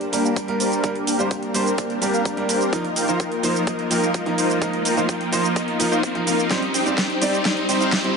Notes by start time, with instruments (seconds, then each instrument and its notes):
Already playing: supersaw synth G3 A#3 D4 G4 A#4 D5, riser
0.01 closed hi-hat
0.12 grand piano G3 A#3 D4 A#4, supersaw synth A#3 D4 G4 A#4 G5, open hi-hat, shaker
0.25 supersaw synth A#3 D4 G4 A#4 F5, closed hi-hat, shaker
0.36 supersaw synth A#3 D4 G4 A#4 D5, kick, closed hi-hat, shaker
0.48 grand piano G3 A#3 D4 A#4, closed hi-hat
0.60 supersaw synth A#3 D4 G4 A#4 C5, open hi-hat, shaker
0.72 closed hi-hat, shaker
0.83 grand piano G3 A#3 D4 A#4, supersaw synth A#3 C4 D4 G4 A#4 D5, kick, closed hi-hat, shaker
0.95 closed hi-hat
1.07 supersaw synth A#3 D4 G4 A#4 G5, open hi-hat, shaker
1.19 grand piano G3 A#3 D4 C5, supersaw synth A#3 D4 G4 A#4 F5, closed hi-hat, shaker
1.31 supersaw synth A#3 D4 G4 A#4 G5, kick, closed hi-hat, shaker
1.43 closed hi-hat
1.54 grand piano G3 A#3 D4 C5, supersaw synth A#3 D4 G4 A#4 C5, open hi-hat, shaker
1.66 closed hi-hat, shaker
1.78 supersaw synth A#3 D4 G4 A#4 D5, kick, closed hi-hat, shaker
1.90 closed hi-hat
2.01 grand piano G3 A#3 D4 A#4, supersaw synth A#3 D4 G4 A#4 G5, open hi-hat, shaker
2.14 supersaw synth A#3 D4 G4 A#4 F5, closed hi-hat, shaker
2.25 supersaw synth A#3 D4 G4 A#4 D5, kick, closed hi-hat, shaker
2.37 grand piano G3 A#3 D4 A#4, closed hi-hat
2.49 supersaw synth A#3 D4 G4 A#4 C5, open hi-hat, shaker
2.61 closed hi-hat, shaker
2.72 grand piano F3 A#3 D#4 A#4, supersaw synth F3 A#3 D#4 F4 A#4 D#5, kick, closed hi-hat, shaker
2.85 closed hi-hat
2.96 supersaw synth A#3 D#4 F4 A#4 G5, open hi-hat, shaker
3.07 grand piano F3 A#3 D#4 C5, supersaw synth A#3 D#4 F4 A#4 F5, closed hi-hat, shaker
3.20 supersaw synth A#3 D#4 F4 A#4 G5, kick, closed hi-hat, shaker
3.32 closed hi-hat
3.43 grand piano F3 A#3 D#4 C5, supersaw synth A#3 D#4 F4 A#4 C5, open hi-hat, shaker
3.55 closed hi-hat, shaker
3.67 supersaw synth A#3 D#4 F4 A#4 D#5, kick, closed hi-hat, shaker
3.79 closed hi-hat
3.90 grand piano F3 A#3 D#4 A#4, supersaw synth A#3 D#4 F4 A#4 G5, open hi-hat, shaker
4.03 supersaw synth A#3 D#4 F4 A#4 F5, closed hi-hat, shaker
4.14 supersaw synth A#3 D#4 F4 A#4 D#5, kick, closed hi-hat, shaker
4.26 grand piano F3 A#3 D#4 A#4, closed hi-hat
4.38 supersaw synth A#3 D#4 F4 A#4 C5, open hi-hat, shaker
4.50 closed hi-hat, shaker
4.61 grand piano F3 A#3 D#4 A#4, supersaw synth A#3 D#4 F4 A#4 D#5, kick, closed hi-hat, shaker
4.73 closed hi-hat
4.85 supersaw synth A#3 D#4 F4 A#4 G5, open hi-hat, shaker
4.96 grand piano F3 A#3 D#4 C5, supersaw synth A#3 D#4 F4 A#4 F5, closed hi-hat, shaker
5.09 supersaw synth A#3 D#4 F4 A#4 G5, kick, closed hi-hat, shaker
5.21 closed hi-hat
5.32 grand piano F3 A#3 D#4 C5, supersaw synth A#3 D#4 F4 A#4 C5, open hi-hat, shaker
5.44 closed hi-hat, shaker
5.56 supersaw synth A#3 D#4 F4 A#4 D#5, kick, closed hi-hat, shaker
5.68 closed hi-hat
5.79 grand piano F3 A#3 D#4 A#4, open hi-hat, shaker
5.91 supersaw synth A#3 D#4 F4 A#4 C5, closed hi-hat, shaker
6.03 supersaw synth A#3 D#4 F4 A#4 C5, kick, closed hi-hat, shaker
6.14 grand piano F3 A#3 D#4 A#4, closed hi-hat
6.26 grand piano F3 A#3 D#4 A#4, supersaw synth A#3 D#4 F4 A#4 F5, open hi-hat, shaker
6.39 closed hi-hat, shaker
6.50 grand piano G3 C4 D#4 C5, supersaw synth G3 C4 D#4 G4 C5 D#5, kick, snare, closed hi-hat, shaker
6.62 closed hi-hat
6.74 supersaw synth C4 D#4 G4 C5 G5, open hi-hat, shaker
6.85 grand piano G3 C4 D#4 D5, supersaw synth C4 D#4 G4 C5 F5, closed hi-hat, shaker
6.98 supersaw synth C4 D#4 G4 C5 G5, kick, snare, closed hi-hat, shaker
7.10 closed hi-hat
7.21 grand piano G3 C4 D#4 D5, supersaw synth C4 D#4 G4 C5 D5, open hi-hat, shaker
7.33 closed hi-hat, shaker
7.45 supersaw synth C4 D#4 G4 C5 D#5, kick, snare, closed hi-hat, shaker
7.57 closed hi-hat
7.68 grand piano G3 C4 D#4 C5, supersaw synth C4 D#4 G4 C5 G5, open hi-hat, shaker
7.81 supersaw synth C4 D#4 G4 C5 F5, closed hi-hat, shaker
7.92 supersaw synth C4 D#4 G4 C5 D#5, kick, snare, closed hi-hat, shaker
8.04 grand piano G3 C4 D#4 C5, closed hi-hat